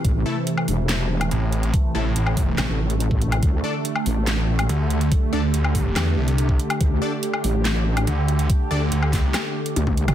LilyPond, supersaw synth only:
\new Staff \with { instrumentName = "Supersaw synth" } { \time 4/4 \key d \dorian \tempo 4 = 142 r8 <a e' a'>16 r2. r16 | r8 <a e' a'>16 r2. r16 | r8 <d' a' d''>16 r2. r16 | r8 <d' a' d''>16 r2. r16 |
r8 <d' a' d''>16 r2. r16 | r8 <d' a' d''>16 r2. r16 | }